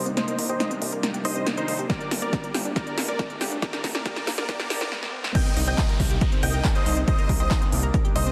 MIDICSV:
0, 0, Header, 1, 9, 480
1, 0, Start_track
1, 0, Key_signature, -3, "minor"
1, 0, Tempo, 431655
1, 190, Time_signature, 4, 2, 24, 8
1, 9251, End_track
2, 0, Start_track
2, 0, Title_t, "Grand piano"
2, 0, Program_c, 0, 0
2, 5950, Note_on_c, 0, 91, 102
2, 6185, Note_off_c, 0, 91, 0
2, 6311, Note_on_c, 0, 91, 94
2, 6546, Note_off_c, 0, 91, 0
2, 7151, Note_on_c, 0, 91, 90
2, 7386, Note_off_c, 0, 91, 0
2, 7510, Note_on_c, 0, 87, 95
2, 7745, Note_off_c, 0, 87, 0
2, 7871, Note_on_c, 0, 87, 100
2, 8106, Note_off_c, 0, 87, 0
2, 8230, Note_on_c, 0, 87, 96
2, 8465, Note_off_c, 0, 87, 0
2, 9069, Note_on_c, 0, 87, 93
2, 9251, Note_off_c, 0, 87, 0
2, 9251, End_track
3, 0, Start_track
3, 0, Title_t, "Supersaw synth"
3, 0, Program_c, 1, 81
3, 189, Note_on_c, 1, 72, 78
3, 189, Note_on_c, 1, 75, 98
3, 425, Note_off_c, 1, 72, 0
3, 425, Note_off_c, 1, 75, 0
3, 549, Note_on_c, 1, 72, 79
3, 550, Note_on_c, 1, 75, 92
3, 785, Note_off_c, 1, 72, 0
3, 785, Note_off_c, 1, 75, 0
3, 1389, Note_on_c, 1, 72, 77
3, 1390, Note_on_c, 1, 75, 94
3, 1625, Note_off_c, 1, 72, 0
3, 1625, Note_off_c, 1, 75, 0
3, 1749, Note_on_c, 1, 63, 77
3, 1749, Note_on_c, 1, 72, 94
3, 1985, Note_off_c, 1, 63, 0
3, 1985, Note_off_c, 1, 72, 0
3, 2109, Note_on_c, 1, 70, 75
3, 2109, Note_on_c, 1, 74, 93
3, 2345, Note_off_c, 1, 70, 0
3, 2345, Note_off_c, 1, 74, 0
3, 2469, Note_on_c, 1, 70, 71
3, 2469, Note_on_c, 1, 74, 84
3, 2705, Note_off_c, 1, 70, 0
3, 2705, Note_off_c, 1, 74, 0
3, 3070, Note_on_c, 1, 70, 79
3, 3070, Note_on_c, 1, 74, 98
3, 3305, Note_off_c, 1, 70, 0
3, 3305, Note_off_c, 1, 74, 0
3, 3429, Note_on_c, 1, 70, 74
3, 3429, Note_on_c, 1, 74, 96
3, 3664, Note_off_c, 1, 70, 0
3, 3664, Note_off_c, 1, 74, 0
3, 4030, Note_on_c, 1, 70, 78
3, 4030, Note_on_c, 1, 74, 100
3, 4265, Note_off_c, 1, 70, 0
3, 4265, Note_off_c, 1, 74, 0
3, 4388, Note_on_c, 1, 70, 75
3, 4388, Note_on_c, 1, 74, 88
3, 4490, Note_off_c, 1, 70, 0
3, 4490, Note_off_c, 1, 74, 0
3, 4509, Note_on_c, 1, 74, 105
3, 4510, Note_on_c, 1, 70, 81
3, 4745, Note_off_c, 1, 70, 0
3, 4745, Note_off_c, 1, 74, 0
3, 4870, Note_on_c, 1, 70, 73
3, 4870, Note_on_c, 1, 74, 94
3, 4971, Note_off_c, 1, 70, 0
3, 4971, Note_off_c, 1, 74, 0
3, 4989, Note_on_c, 1, 70, 81
3, 4990, Note_on_c, 1, 74, 104
3, 5211, Note_off_c, 1, 70, 0
3, 5211, Note_off_c, 1, 74, 0
3, 5230, Note_on_c, 1, 70, 79
3, 5230, Note_on_c, 1, 74, 99
3, 5451, Note_off_c, 1, 70, 0
3, 5451, Note_off_c, 1, 74, 0
3, 5949, Note_on_c, 1, 75, 82
3, 5949, Note_on_c, 1, 79, 106
3, 6185, Note_off_c, 1, 75, 0
3, 6185, Note_off_c, 1, 79, 0
3, 6310, Note_on_c, 1, 75, 80
3, 6310, Note_on_c, 1, 79, 94
3, 6545, Note_off_c, 1, 75, 0
3, 6545, Note_off_c, 1, 79, 0
3, 7150, Note_on_c, 1, 75, 74
3, 7150, Note_on_c, 1, 79, 95
3, 7385, Note_off_c, 1, 75, 0
3, 7385, Note_off_c, 1, 79, 0
3, 7511, Note_on_c, 1, 72, 77
3, 7511, Note_on_c, 1, 75, 93
3, 7746, Note_off_c, 1, 72, 0
3, 7746, Note_off_c, 1, 75, 0
3, 7869, Note_on_c, 1, 75, 105
3, 7870, Note_on_c, 1, 72, 79
3, 8105, Note_off_c, 1, 72, 0
3, 8105, Note_off_c, 1, 75, 0
3, 8229, Note_on_c, 1, 72, 81
3, 8229, Note_on_c, 1, 75, 98
3, 8465, Note_off_c, 1, 72, 0
3, 8465, Note_off_c, 1, 75, 0
3, 9070, Note_on_c, 1, 72, 79
3, 9070, Note_on_c, 1, 75, 96
3, 9251, Note_off_c, 1, 72, 0
3, 9251, Note_off_c, 1, 75, 0
3, 9251, End_track
4, 0, Start_track
4, 0, Title_t, "Synth pluck"
4, 0, Program_c, 2, 84
4, 68, Note_on_c, 2, 60, 78
4, 183, Note_off_c, 2, 60, 0
4, 188, Note_on_c, 2, 58, 83
4, 303, Note_off_c, 2, 58, 0
4, 309, Note_on_c, 2, 70, 77
4, 415, Note_off_c, 2, 70, 0
4, 429, Note_on_c, 2, 70, 76
4, 543, Note_off_c, 2, 70, 0
4, 549, Note_on_c, 2, 67, 78
4, 626, Note_off_c, 2, 67, 0
4, 669, Note_on_c, 2, 63, 101
4, 746, Note_off_c, 2, 63, 0
4, 788, Note_on_c, 2, 60, 77
4, 903, Note_off_c, 2, 60, 0
4, 909, Note_on_c, 2, 58, 78
4, 1024, Note_off_c, 2, 58, 0
4, 1029, Note_on_c, 2, 70, 78
4, 1135, Note_off_c, 2, 70, 0
4, 1149, Note_on_c, 2, 70, 82
4, 1263, Note_off_c, 2, 70, 0
4, 1269, Note_on_c, 2, 67, 79
4, 1346, Note_off_c, 2, 67, 0
4, 1389, Note_on_c, 2, 63, 101
4, 1466, Note_off_c, 2, 63, 0
4, 1508, Note_on_c, 2, 60, 76
4, 1623, Note_off_c, 2, 60, 0
4, 1629, Note_on_c, 2, 58, 84
4, 1744, Note_off_c, 2, 58, 0
4, 1750, Note_on_c, 2, 70, 76
4, 1857, Note_off_c, 2, 70, 0
4, 1870, Note_on_c, 2, 70, 76
4, 1984, Note_off_c, 2, 70, 0
4, 1989, Note_on_c, 2, 67, 77
4, 2066, Note_off_c, 2, 67, 0
4, 2109, Note_on_c, 2, 67, 93
4, 2186, Note_off_c, 2, 67, 0
4, 2229, Note_on_c, 2, 62, 70
4, 2344, Note_off_c, 2, 62, 0
4, 2350, Note_on_c, 2, 58, 71
4, 2464, Note_off_c, 2, 58, 0
4, 2470, Note_on_c, 2, 74, 72
4, 2577, Note_off_c, 2, 74, 0
4, 2590, Note_on_c, 2, 74, 74
4, 2704, Note_off_c, 2, 74, 0
4, 2710, Note_on_c, 2, 70, 71
4, 2787, Note_off_c, 2, 70, 0
4, 2830, Note_on_c, 2, 67, 90
4, 2907, Note_off_c, 2, 67, 0
4, 2950, Note_on_c, 2, 62, 73
4, 3051, Note_off_c, 2, 62, 0
4, 3070, Note_on_c, 2, 67, 101
4, 3147, Note_off_c, 2, 67, 0
4, 3190, Note_on_c, 2, 62, 76
4, 3304, Note_off_c, 2, 62, 0
4, 3310, Note_on_c, 2, 58, 75
4, 3424, Note_off_c, 2, 58, 0
4, 3431, Note_on_c, 2, 74, 72
4, 3537, Note_off_c, 2, 74, 0
4, 3551, Note_on_c, 2, 74, 78
4, 3664, Note_off_c, 2, 74, 0
4, 3671, Note_on_c, 2, 70, 71
4, 3747, Note_off_c, 2, 70, 0
4, 3790, Note_on_c, 2, 67, 100
4, 3867, Note_off_c, 2, 67, 0
4, 3910, Note_on_c, 2, 62, 72
4, 4011, Note_off_c, 2, 62, 0
4, 4029, Note_on_c, 2, 67, 101
4, 4106, Note_off_c, 2, 67, 0
4, 4149, Note_on_c, 2, 62, 76
4, 4264, Note_off_c, 2, 62, 0
4, 4269, Note_on_c, 2, 58, 78
4, 4384, Note_off_c, 2, 58, 0
4, 4389, Note_on_c, 2, 74, 77
4, 4490, Note_off_c, 2, 74, 0
4, 4508, Note_on_c, 2, 67, 105
4, 4586, Note_off_c, 2, 67, 0
4, 4629, Note_on_c, 2, 62, 77
4, 4744, Note_off_c, 2, 62, 0
4, 4749, Note_on_c, 2, 58, 73
4, 4863, Note_off_c, 2, 58, 0
4, 4869, Note_on_c, 2, 74, 78
4, 4970, Note_off_c, 2, 74, 0
4, 4989, Note_on_c, 2, 67, 105
4, 5066, Note_off_c, 2, 67, 0
4, 5110, Note_on_c, 2, 62, 83
4, 5211, Note_off_c, 2, 62, 0
4, 5229, Note_on_c, 2, 67, 104
4, 5306, Note_off_c, 2, 67, 0
4, 5349, Note_on_c, 2, 62, 78
4, 5451, Note_off_c, 2, 62, 0
4, 5950, Note_on_c, 2, 70, 83
4, 6064, Note_off_c, 2, 70, 0
4, 6071, Note_on_c, 2, 67, 76
4, 6147, Note_off_c, 2, 67, 0
4, 6190, Note_on_c, 2, 63, 102
4, 6267, Note_off_c, 2, 63, 0
4, 6310, Note_on_c, 2, 60, 76
4, 6424, Note_off_c, 2, 60, 0
4, 6430, Note_on_c, 2, 58, 81
4, 6544, Note_off_c, 2, 58, 0
4, 6550, Note_on_c, 2, 70, 79
4, 6657, Note_off_c, 2, 70, 0
4, 6670, Note_on_c, 2, 70, 73
4, 6784, Note_off_c, 2, 70, 0
4, 6790, Note_on_c, 2, 67, 77
4, 6867, Note_off_c, 2, 67, 0
4, 6910, Note_on_c, 2, 63, 99
4, 6987, Note_off_c, 2, 63, 0
4, 7031, Note_on_c, 2, 60, 82
4, 7144, Note_off_c, 2, 60, 0
4, 7151, Note_on_c, 2, 58, 77
4, 7265, Note_off_c, 2, 58, 0
4, 7271, Note_on_c, 2, 70, 78
4, 7378, Note_off_c, 2, 70, 0
4, 7391, Note_on_c, 2, 70, 83
4, 7505, Note_off_c, 2, 70, 0
4, 7511, Note_on_c, 2, 67, 78
4, 7587, Note_off_c, 2, 67, 0
4, 7630, Note_on_c, 2, 63, 104
4, 7707, Note_off_c, 2, 63, 0
4, 7751, Note_on_c, 2, 60, 78
4, 7865, Note_off_c, 2, 60, 0
4, 7871, Note_on_c, 2, 58, 84
4, 7985, Note_off_c, 2, 58, 0
4, 7990, Note_on_c, 2, 70, 76
4, 8096, Note_off_c, 2, 70, 0
4, 8109, Note_on_c, 2, 70, 79
4, 8224, Note_off_c, 2, 70, 0
4, 8230, Note_on_c, 2, 67, 78
4, 8307, Note_off_c, 2, 67, 0
4, 8350, Note_on_c, 2, 63, 101
4, 8427, Note_off_c, 2, 63, 0
4, 8470, Note_on_c, 2, 60, 76
4, 8584, Note_off_c, 2, 60, 0
4, 8590, Note_on_c, 2, 58, 78
4, 8704, Note_off_c, 2, 58, 0
4, 8710, Note_on_c, 2, 70, 78
4, 8815, Note_off_c, 2, 70, 0
4, 8828, Note_on_c, 2, 70, 86
4, 8943, Note_off_c, 2, 70, 0
4, 8949, Note_on_c, 2, 67, 82
4, 9026, Note_off_c, 2, 67, 0
4, 9069, Note_on_c, 2, 63, 100
4, 9146, Note_off_c, 2, 63, 0
4, 9190, Note_on_c, 2, 60, 76
4, 9251, Note_off_c, 2, 60, 0
4, 9251, End_track
5, 0, Start_track
5, 0, Title_t, "Analog synth pad"
5, 0, Program_c, 3, 89
5, 0, Note_on_c, 3, 48, 76
5, 0, Note_on_c, 3, 55, 72
5, 0, Note_on_c, 3, 58, 72
5, 0, Note_on_c, 3, 62, 73
5, 0, Note_on_c, 3, 63, 83
5, 2072, Note_off_c, 3, 48, 0
5, 2073, Note_off_c, 3, 63, 0
5, 5426, Note_off_c, 3, 55, 0
5, 5426, Note_off_c, 3, 58, 0
5, 5426, Note_off_c, 3, 62, 0
5, 5950, Note_on_c, 3, 48, 79
5, 5950, Note_on_c, 3, 58, 72
5, 5950, Note_on_c, 3, 62, 73
5, 5951, Note_on_c, 3, 55, 70
5, 5951, Note_on_c, 3, 63, 87
5, 9251, Note_off_c, 3, 48, 0
5, 9251, Note_off_c, 3, 55, 0
5, 9251, Note_off_c, 3, 58, 0
5, 9251, Note_off_c, 3, 62, 0
5, 9251, Note_off_c, 3, 63, 0
5, 9251, End_track
6, 0, Start_track
6, 0, Title_t, "Analog synth bass"
6, 0, Program_c, 4, 38
6, 0, Note_on_c, 4, 36, 99
6, 141, Note_off_c, 4, 36, 0
6, 429, Note_on_c, 4, 36, 98
6, 621, Note_off_c, 4, 36, 0
6, 909, Note_on_c, 4, 36, 95
6, 1101, Note_off_c, 4, 36, 0
6, 1390, Note_on_c, 4, 36, 79
6, 1581, Note_off_c, 4, 36, 0
6, 1869, Note_on_c, 4, 36, 104
6, 2061, Note_off_c, 4, 36, 0
6, 2350, Note_on_c, 4, 31, 104
6, 2541, Note_off_c, 4, 31, 0
6, 2830, Note_on_c, 4, 31, 99
6, 3022, Note_off_c, 4, 31, 0
6, 3310, Note_on_c, 4, 31, 84
6, 3502, Note_off_c, 4, 31, 0
6, 3790, Note_on_c, 4, 31, 103
6, 3981, Note_off_c, 4, 31, 0
6, 4269, Note_on_c, 4, 31, 102
6, 4461, Note_off_c, 4, 31, 0
6, 4748, Note_on_c, 4, 31, 96
6, 4941, Note_off_c, 4, 31, 0
6, 5230, Note_on_c, 4, 31, 91
6, 5421, Note_off_c, 4, 31, 0
6, 6190, Note_on_c, 4, 36, 102
6, 6381, Note_off_c, 4, 36, 0
6, 6670, Note_on_c, 4, 36, 100
6, 6861, Note_off_c, 4, 36, 0
6, 7150, Note_on_c, 4, 36, 85
6, 7341, Note_off_c, 4, 36, 0
6, 7630, Note_on_c, 4, 36, 106
6, 7822, Note_off_c, 4, 36, 0
6, 8110, Note_on_c, 4, 36, 102
6, 8301, Note_off_c, 4, 36, 0
6, 8590, Note_on_c, 4, 36, 97
6, 8781, Note_off_c, 4, 36, 0
6, 9069, Note_on_c, 4, 36, 83
6, 9251, Note_off_c, 4, 36, 0
6, 9251, End_track
7, 0, Start_track
7, 0, Title_t, "Downlifter"
7, 0, Program_c, 5, 103
7, 5949, Note_on_c, 5, 60, 77
7, 9251, Note_off_c, 5, 60, 0
7, 9251, End_track
8, 0, Start_track
8, 0, Title_t, "Riser"
8, 0, Program_c, 6, 103
8, 0, Note_on_c, 6, 60, 78
8, 5950, Note_off_c, 6, 60, 0
8, 9251, End_track
9, 0, Start_track
9, 0, Title_t, "Drums"
9, 69, Note_on_c, 9, 42, 40
9, 180, Note_off_c, 9, 42, 0
9, 189, Note_on_c, 9, 38, 59
9, 189, Note_on_c, 9, 42, 92
9, 300, Note_off_c, 9, 38, 0
9, 300, Note_off_c, 9, 42, 0
9, 310, Note_on_c, 9, 42, 39
9, 421, Note_off_c, 9, 42, 0
9, 429, Note_on_c, 9, 46, 110
9, 541, Note_off_c, 9, 46, 0
9, 550, Note_on_c, 9, 42, 39
9, 661, Note_off_c, 9, 42, 0
9, 669, Note_on_c, 9, 38, 60
9, 669, Note_on_c, 9, 42, 89
9, 780, Note_off_c, 9, 38, 0
9, 780, Note_off_c, 9, 42, 0
9, 789, Note_on_c, 9, 42, 40
9, 900, Note_off_c, 9, 42, 0
9, 909, Note_on_c, 9, 46, 99
9, 1020, Note_off_c, 9, 46, 0
9, 1028, Note_on_c, 9, 42, 38
9, 1140, Note_off_c, 9, 42, 0
9, 1149, Note_on_c, 9, 38, 69
9, 1149, Note_on_c, 9, 42, 92
9, 1260, Note_off_c, 9, 38, 0
9, 1260, Note_off_c, 9, 42, 0
9, 1270, Note_on_c, 9, 42, 41
9, 1381, Note_off_c, 9, 42, 0
9, 1389, Note_on_c, 9, 46, 112
9, 1501, Note_off_c, 9, 46, 0
9, 1510, Note_on_c, 9, 42, 41
9, 1621, Note_off_c, 9, 42, 0
9, 1630, Note_on_c, 9, 38, 70
9, 1630, Note_on_c, 9, 42, 94
9, 1741, Note_off_c, 9, 38, 0
9, 1741, Note_off_c, 9, 42, 0
9, 1751, Note_on_c, 9, 42, 39
9, 1862, Note_off_c, 9, 42, 0
9, 1870, Note_on_c, 9, 46, 90
9, 1982, Note_off_c, 9, 46, 0
9, 1991, Note_on_c, 9, 42, 38
9, 2102, Note_off_c, 9, 42, 0
9, 2110, Note_on_c, 9, 36, 127
9, 2110, Note_on_c, 9, 38, 76
9, 2110, Note_on_c, 9, 42, 88
9, 2221, Note_off_c, 9, 36, 0
9, 2221, Note_off_c, 9, 38, 0
9, 2221, Note_off_c, 9, 42, 0
9, 2231, Note_on_c, 9, 42, 38
9, 2342, Note_off_c, 9, 42, 0
9, 2350, Note_on_c, 9, 38, 77
9, 2350, Note_on_c, 9, 46, 114
9, 2461, Note_off_c, 9, 38, 0
9, 2461, Note_off_c, 9, 46, 0
9, 2590, Note_on_c, 9, 36, 122
9, 2590, Note_on_c, 9, 38, 73
9, 2590, Note_on_c, 9, 42, 91
9, 2701, Note_off_c, 9, 36, 0
9, 2701, Note_off_c, 9, 38, 0
9, 2701, Note_off_c, 9, 42, 0
9, 2710, Note_on_c, 9, 42, 39
9, 2821, Note_off_c, 9, 42, 0
9, 2830, Note_on_c, 9, 38, 82
9, 2830, Note_on_c, 9, 46, 102
9, 2941, Note_off_c, 9, 38, 0
9, 2941, Note_off_c, 9, 46, 0
9, 2950, Note_on_c, 9, 42, 38
9, 3062, Note_off_c, 9, 42, 0
9, 3070, Note_on_c, 9, 36, 122
9, 3070, Note_on_c, 9, 38, 82
9, 3070, Note_on_c, 9, 42, 91
9, 3181, Note_off_c, 9, 36, 0
9, 3181, Note_off_c, 9, 38, 0
9, 3181, Note_off_c, 9, 42, 0
9, 3190, Note_on_c, 9, 42, 38
9, 3301, Note_off_c, 9, 42, 0
9, 3310, Note_on_c, 9, 38, 88
9, 3310, Note_on_c, 9, 46, 116
9, 3421, Note_off_c, 9, 38, 0
9, 3421, Note_off_c, 9, 46, 0
9, 3429, Note_on_c, 9, 42, 39
9, 3540, Note_off_c, 9, 42, 0
9, 3549, Note_on_c, 9, 38, 88
9, 3549, Note_on_c, 9, 42, 87
9, 3550, Note_on_c, 9, 36, 126
9, 3660, Note_off_c, 9, 38, 0
9, 3660, Note_off_c, 9, 42, 0
9, 3661, Note_off_c, 9, 36, 0
9, 3670, Note_on_c, 9, 42, 37
9, 3781, Note_off_c, 9, 42, 0
9, 3790, Note_on_c, 9, 38, 86
9, 3790, Note_on_c, 9, 46, 98
9, 3901, Note_off_c, 9, 38, 0
9, 3901, Note_off_c, 9, 46, 0
9, 3910, Note_on_c, 9, 42, 38
9, 4021, Note_off_c, 9, 42, 0
9, 4029, Note_on_c, 9, 38, 92
9, 4029, Note_on_c, 9, 42, 91
9, 4030, Note_on_c, 9, 36, 122
9, 4141, Note_off_c, 9, 36, 0
9, 4141, Note_off_c, 9, 38, 0
9, 4141, Note_off_c, 9, 42, 0
9, 4149, Note_on_c, 9, 38, 83
9, 4149, Note_on_c, 9, 42, 36
9, 4260, Note_off_c, 9, 38, 0
9, 4260, Note_off_c, 9, 42, 0
9, 4269, Note_on_c, 9, 36, 64
9, 4269, Note_on_c, 9, 38, 95
9, 4269, Note_on_c, 9, 46, 110
9, 4380, Note_off_c, 9, 38, 0
9, 4380, Note_off_c, 9, 46, 0
9, 4381, Note_off_c, 9, 36, 0
9, 4390, Note_on_c, 9, 38, 82
9, 4390, Note_on_c, 9, 42, 38
9, 4501, Note_off_c, 9, 38, 0
9, 4501, Note_off_c, 9, 42, 0
9, 4509, Note_on_c, 9, 36, 126
9, 4510, Note_on_c, 9, 38, 95
9, 4510, Note_on_c, 9, 42, 87
9, 4621, Note_off_c, 9, 36, 0
9, 4621, Note_off_c, 9, 38, 0
9, 4621, Note_off_c, 9, 42, 0
9, 4630, Note_on_c, 9, 38, 88
9, 4630, Note_on_c, 9, 42, 39
9, 4741, Note_off_c, 9, 38, 0
9, 4741, Note_off_c, 9, 42, 0
9, 4750, Note_on_c, 9, 38, 100
9, 4750, Note_on_c, 9, 46, 101
9, 4861, Note_off_c, 9, 38, 0
9, 4861, Note_off_c, 9, 46, 0
9, 4870, Note_on_c, 9, 38, 89
9, 4982, Note_off_c, 9, 38, 0
9, 4989, Note_on_c, 9, 36, 126
9, 4990, Note_on_c, 9, 38, 105
9, 4990, Note_on_c, 9, 42, 88
9, 5101, Note_off_c, 9, 36, 0
9, 5101, Note_off_c, 9, 38, 0
9, 5101, Note_off_c, 9, 42, 0
9, 5110, Note_on_c, 9, 38, 90
9, 5110, Note_on_c, 9, 42, 38
9, 5221, Note_off_c, 9, 38, 0
9, 5221, Note_off_c, 9, 42, 0
9, 5229, Note_on_c, 9, 38, 110
9, 5229, Note_on_c, 9, 46, 112
9, 5340, Note_off_c, 9, 38, 0
9, 5340, Note_off_c, 9, 46, 0
9, 5349, Note_on_c, 9, 38, 96
9, 5349, Note_on_c, 9, 42, 39
9, 5461, Note_off_c, 9, 38, 0
9, 5461, Note_off_c, 9, 42, 0
9, 5470, Note_on_c, 9, 38, 62
9, 5581, Note_off_c, 9, 38, 0
9, 5590, Note_on_c, 9, 38, 61
9, 5702, Note_off_c, 9, 38, 0
9, 5830, Note_on_c, 9, 38, 83
9, 5941, Note_off_c, 9, 38, 0
9, 5950, Note_on_c, 9, 36, 122
9, 5950, Note_on_c, 9, 42, 98
9, 5950, Note_on_c, 9, 49, 107
9, 6061, Note_off_c, 9, 36, 0
9, 6061, Note_off_c, 9, 42, 0
9, 6061, Note_off_c, 9, 49, 0
9, 6070, Note_on_c, 9, 42, 42
9, 6182, Note_off_c, 9, 42, 0
9, 6190, Note_on_c, 9, 46, 109
9, 6301, Note_off_c, 9, 46, 0
9, 6310, Note_on_c, 9, 42, 43
9, 6422, Note_off_c, 9, 42, 0
9, 6430, Note_on_c, 9, 36, 118
9, 6430, Note_on_c, 9, 39, 120
9, 6430, Note_on_c, 9, 42, 91
9, 6541, Note_off_c, 9, 36, 0
9, 6541, Note_off_c, 9, 39, 0
9, 6541, Note_off_c, 9, 42, 0
9, 6550, Note_on_c, 9, 42, 43
9, 6662, Note_off_c, 9, 42, 0
9, 6670, Note_on_c, 9, 36, 65
9, 6670, Note_on_c, 9, 46, 110
9, 6781, Note_off_c, 9, 36, 0
9, 6781, Note_off_c, 9, 46, 0
9, 6790, Note_on_c, 9, 42, 40
9, 6901, Note_off_c, 9, 42, 0
9, 6909, Note_on_c, 9, 42, 98
9, 6910, Note_on_c, 9, 36, 117
9, 7020, Note_off_c, 9, 42, 0
9, 7021, Note_off_c, 9, 36, 0
9, 7029, Note_on_c, 9, 42, 42
9, 7141, Note_off_c, 9, 42, 0
9, 7149, Note_on_c, 9, 46, 112
9, 7260, Note_off_c, 9, 46, 0
9, 7269, Note_on_c, 9, 42, 43
9, 7380, Note_off_c, 9, 42, 0
9, 7389, Note_on_c, 9, 39, 126
9, 7389, Note_on_c, 9, 42, 96
9, 7390, Note_on_c, 9, 36, 125
9, 7501, Note_off_c, 9, 36, 0
9, 7501, Note_off_c, 9, 39, 0
9, 7501, Note_off_c, 9, 42, 0
9, 7510, Note_on_c, 9, 42, 38
9, 7621, Note_off_c, 9, 42, 0
9, 7630, Note_on_c, 9, 46, 104
9, 7741, Note_off_c, 9, 46, 0
9, 7750, Note_on_c, 9, 42, 41
9, 7862, Note_off_c, 9, 42, 0
9, 7870, Note_on_c, 9, 36, 124
9, 7870, Note_on_c, 9, 42, 96
9, 7981, Note_off_c, 9, 36, 0
9, 7981, Note_off_c, 9, 42, 0
9, 7990, Note_on_c, 9, 42, 40
9, 8101, Note_off_c, 9, 42, 0
9, 8110, Note_on_c, 9, 36, 68
9, 8110, Note_on_c, 9, 46, 110
9, 8221, Note_off_c, 9, 36, 0
9, 8221, Note_off_c, 9, 46, 0
9, 8230, Note_on_c, 9, 42, 39
9, 8341, Note_off_c, 9, 42, 0
9, 8349, Note_on_c, 9, 39, 120
9, 8349, Note_on_c, 9, 42, 92
9, 8350, Note_on_c, 9, 36, 124
9, 8461, Note_off_c, 9, 36, 0
9, 8461, Note_off_c, 9, 39, 0
9, 8461, Note_off_c, 9, 42, 0
9, 8470, Note_on_c, 9, 42, 41
9, 8581, Note_off_c, 9, 42, 0
9, 8590, Note_on_c, 9, 46, 111
9, 8701, Note_off_c, 9, 46, 0
9, 8710, Note_on_c, 9, 42, 41
9, 8821, Note_off_c, 9, 42, 0
9, 8830, Note_on_c, 9, 36, 121
9, 8830, Note_on_c, 9, 42, 95
9, 8941, Note_off_c, 9, 36, 0
9, 8941, Note_off_c, 9, 42, 0
9, 8951, Note_on_c, 9, 42, 41
9, 9062, Note_off_c, 9, 42, 0
9, 9070, Note_on_c, 9, 46, 115
9, 9181, Note_off_c, 9, 46, 0
9, 9190, Note_on_c, 9, 42, 40
9, 9251, Note_off_c, 9, 42, 0
9, 9251, End_track
0, 0, End_of_file